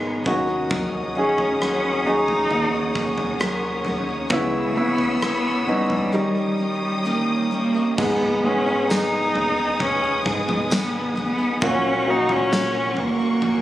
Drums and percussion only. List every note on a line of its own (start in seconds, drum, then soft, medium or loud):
0.26 kick medium
0.71 kick loud
0.71 floor tom loud
1.38 floor tom medium
1.62 cross-stick medium
2.28 floor tom medium
2.51 floor tom medium
2.95 kick medium
3.18 floor tom medium
3.41 cross-stick loud
3.85 floor tom medium
4.30 kick loud
4.30 floor tom loud
4.98 floor tom medium
5.22 cross-stick loud
5.90 floor tom medium
7.98 kick loud
7.98 floor tom loud
7.98 crash medium
8.90 snare loud
8.90 tambourine medium
9.35 floor tom medium
9.80 kick medium
9.80 floor tom medium
10.26 kick medium
10.49 floor tom medium
10.71 snare loud
10.71 tambourine medium
11.17 floor tom soft
11.62 kick loud
11.62 floor tom loud
12.29 floor tom medium
12.53 snare loud
12.53 tambourine medium
12.97 floor tom medium
13.42 floor tom medium